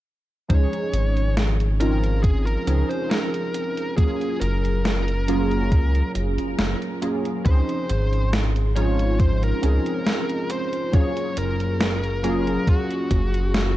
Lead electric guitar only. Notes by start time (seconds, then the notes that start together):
0.50 C#5
1.80 A#4
2.23 G#4
2.46 A#4
2.89 C5
3.10 A#4
3.97 G#4
4.40 A#4
7.46 C5
8.76 C#5
9.20 C5
9.44 A#4
10.51 C5
10.95 C#5
11.39 A#4
12.69 F#4